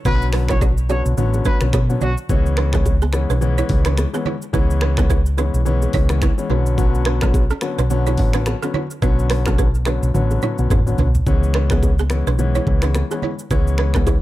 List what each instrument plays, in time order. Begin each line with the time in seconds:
0.05 fingered electric bass B1, grand piano D3 F#3 B3 C#4, balafon D4 B4, trumpet B4, kick, low conga, shaker
0.22 shaker
0.33 balafon D4 B4, finger snap, cross-stick, open hi-hat, low bongo
0.48 grand piano D3 F#3 B3 C#4, balafon E4 C#5, trumpet C#5, finger snap, kick, cross-stick, low bongo, shaker
0.61 balafon F#4 D5, kick, high bongo, shaker
0.77 shaker
0.89 grand piano D3 F#3 B3 C#4, balafon F#4 D5, trumpet C#5, high bongo, shaker
1.06 fingered electric bass B1, shaker
1.17 fingered electric bass A1, grand piano D3 F#3 B3 C#4, low conga, shaker
1.34 high bongo, shaker
1.45 balafon D4 B4, trumpet B4, kick, low bongo, shaker
1.61 fingered electric bass B1, grand piano D3 F#3 B3 C#4, finger snap, cross-stick, shaker
1.73 fingered electric bass B2, balafon F#4 C#5, finger snap, kick, cross-stick, high bongo, shaker
1.89 grand piano D3 F#3 B3 C#4, shaker
2.01 fingered electric bass B1, balafon F#4 D5, trumpet F#4, low conga, shaker
2.17 shaker
2.29 fingered electric bass C#2, grand piano E3 G#3 B3 C#4, kick, low conga, shaker
2.46 shaker
2.57 balafon D4 B4, finger snap, cross-stick, low bongo
2.73 grand piano E3 G#3 B3 C#4, balafon B3 G#4, finger snap, kick, cross-stick, low bongo, shaker
2.86 kick, high bongo, shaker
3.02 balafon B3 G#4, shaker
3.13 grand piano E3 G#3 B3 C#4, finger snap, cross-stick, high bongo, shaker
3.30 fingered electric bass B1, balafon D4 B4, shaker
3.41 grand piano E3 G#3 B3 C#4, low conga, shaker
3.58 balafon E4 C#5, high bongo, shaker
3.69 fingered electric bass C#2, kick, open hi-hat, low bongo
3.85 grand piano E3 G#3 B3 C#4, balafon D4 B4, finger snap, cross-stick, shaker
3.98 finger snap, cross-stick, high bongo, shaker
4.13 grand piano E3 G#3 B3 C#4, balafon B3 G#4, shaker
4.25 balafon E4 C#5, low conga
4.42 shaker
4.53 fingered electric bass C#2, grand piano E3 G#3 B3 C#4, balafon E4 B4, kick, low conga, shaker
4.70 shaker
4.81 balafon D4 B4, finger snap, cross-stick, low bongo
4.97 grand piano E3 G#3 B3 C#4, balafon B3 G#4, finger snap, kick, cross-stick, low bongo, shaker
5.10 balafon E4 B4, kick, high bongo, shaker
5.26 shaker
5.37 grand piano E3 G#3 B3 C#4, balafon D4 B4, high bongo, shaker
5.54 fingered electric bass B1, shaker
5.65 grand piano E3 G#3 B3 C#4, low conga, shaker
5.82 high bongo, shaker
5.93 fingered electric bass C#2, balafon E4 C#5, kick, open hi-hat, low bongo
6.09 grand piano E3 G#3 B3 C#4, finger snap, cross-stick, shaker
6.22 balafon E4 B4, finger snap, kick, cross-stick, high bongo, shaker
6.38 grand piano E3 G#3 B3 C#4, shaker
6.49 fingered electric bass B1, grand piano D3 F#3 B3 C#4, balafon D4 B4, low conga
6.66 shaker
6.77 grand piano D3 F#3 B3 C#4, kick, low conga, shaker
6.95 shaker
7.05 balafon D4 B4, finger snap, cross-stick, low bongo
7.21 grand piano D3 F#3 B3 C#4, balafon C#4 A4, finger snap, kick, cross-stick, low bongo, shaker
7.34 kick, high bongo, shaker
7.50 balafon C#4 A4, shaker
7.61 grand piano D3 F#3 B3 C#4, finger snap, cross-stick, high bongo, shaker
7.78 fingered electric bass B1, balafon D4 B4, shaker
7.90 grand piano D3 F#3 B3 C#4, low conga, shaker
8.06 balafon E4 C#5, high bongo, shaker
8.17 fingered electric bass A1, kick, open hi-hat, low bongo
8.33 grand piano D3 F#3 B3 C#4, balafon D4 B4, finger snap, cross-stick, shaker
8.46 finger snap, cross-stick, high bongo, shaker
8.62 grand piano D3 F#3 B3 C#4, balafon C#4 A4, shaker
8.74 balafon E4 C#5, low conga
8.90 shaker
9.02 fingered electric bass B1, grand piano D3 F#3 B3 C#4, balafon D4 B4, kick, low conga, shaker
9.19 shaker
9.30 balafon D4 B4, finger snap, cross-stick, open hi-hat, low bongo
9.46 grand piano D3 F#3 B3 C#4, balafon C#4 A4, finger snap, kick, cross-stick, low bongo, shaker
9.58 balafon D4 B4, kick, high bongo, shaker
9.75 shaker
9.85 grand piano D3 F#3 B3 C#4, balafon D4 B4, finger snap, cross-stick, high bongo, shaker
10.03 fingered electric bass B1, shaker
10.14 fingered electric bass A1, grand piano D3 F#3 B3 C#4, high tom, low conga, shaker
10.31 high tom, high bongo, shaker
10.42 balafon E4 C#5, mid tom, low bongo, shaker
10.58 fingered electric bass B1, grand piano D3 F#3 B3 C#4, shaker
10.70 fingered electric bass A1, balafon D4 B4, kick, mid tom, high bongo, shaker
10.86 grand piano D3 F#3 B3 C#4, shaker
10.98 fingered electric bass B1, balafon D4 B4, floor tom, low conga, shaker
11.15 floor tom, shaker
11.26 fingered electric bass C#2, grand piano E3 G#3 B3 C#4, kick, low conga, shaker
11.43 shaker
11.54 balafon D4 B4, finger snap, cross-stick
11.70 grand piano E3 G#3 B3 C#4, balafon B3 G#4, finger snap, kick, cross-stick, low bongo, shaker
11.83 kick, high bongo, shaker
11.99 balafon B3 G#4, shaker
12.10 grand piano E3 G#3 B3 C#4, finger snap, cross-stick, shaker
12.27 fingered electric bass B1, balafon D4 B4, shaker
12.39 grand piano E3 G#3 B3 C#4, low conga, shaker
12.55 balafon E4 C#5, shaker
12.67 fingered electric bass C#2, kick, low bongo
12.82 grand piano E3 G#3 B3 C#4, balafon D4 B4, finger snap, cross-stick, shaker
12.95 finger snap, cross-stick, high bongo, shaker
13.11 grand piano E3 G#3 B3 C#4, balafon B3 G#4, shaker
13.22 balafon E4 C#5, low conga
13.39 shaker
13.51 fingered electric bass C#2, grand piano E3 G#3 B3 C#4, balafon E4 B4, kick, low conga, shaker
13.67 shaker
13.78 balafon D4 B4, finger snap, cross-stick
13.94 grand piano E3 G#3 B3 C#4, balafon B3 G#4, finger snap, kick, cross-stick, low bongo, shaker
14.07 balafon E4 B4, kick, high bongo, shaker